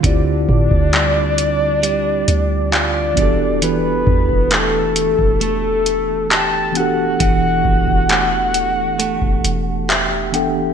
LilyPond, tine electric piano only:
\new Staff \with { instrumentName = "Tine electric piano" } { \time 4/4 \key e \phrygian \tempo 4 = 67 << { r1 | r1 | r2. e''8 g''8 | } \\ { <d c' e' f' g'>2.~ <d c' e' f' g'>8 <e b d' fis' g' a'>8~ | <e b d' fis' g' a'>2.~ <e b d' fis' g' a'>8 <e b d' fis' g' a'>8~ | <e b d' fis' g' a'>2.~ <e b d' fis' g' a'>8 <e b d' g' a' fis''>8 | } >> }